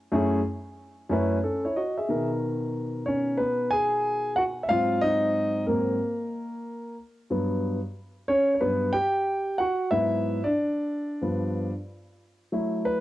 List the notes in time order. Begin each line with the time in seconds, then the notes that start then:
0.12 F#2 A3 C#4 E4 G#4
1.09 F#2 A3 C#4 E4 B4
1.44 C#4 A4
1.65 E4 C#5
1.76 F#4 D#5
1.97 G#4 E5
2.08 B2 D#3 A#4
3.06 C#4 C#5
3.37 B3 B4
3.71 G#4 G#5
4.36 F#4 F#5
4.63 E5
4.69 G#2 F#3 C4 F4 F5
5.01 D#4 D#5
5.67 G#2 F#3 A#3 C4 A#4
7.30 G2 F#3 B3
8.28 C#4 C#5
8.55 C#5
8.61 G2 F#3 B3 B4
8.93 G4 G5
9.58 F#4 F#5
9.91 G#2 F#3 B3 E4 E5
10.44 D4 D5
11.21 G2 F3 B3
12.52 F#3 A3 E4
12.85 B4